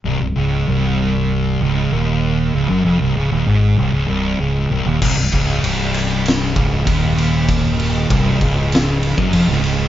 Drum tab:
CC |----------------|----------------|x---------------|----------------|
RD |----------------|----------------|--x-x-x-x-x-x-x-|x-x-x-x-x-x-x-x-|
SD |----------------|----------------|--------o-------|--------o----o--|
BD |----------------|----------------|o-o-------o-o---|o---o-o----o----|